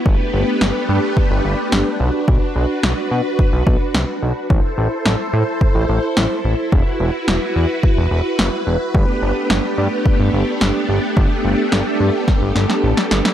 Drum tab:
SD |----o-------o---|----o-------o---|----o-------o---|----o-------o---|
BD |o-------o-------|o-------o-o-----|o-------o-------|o-------o-------|

SD |----o-------o---|----o---o-oo-ooo|
BD |o-------o-------|o-------o-------|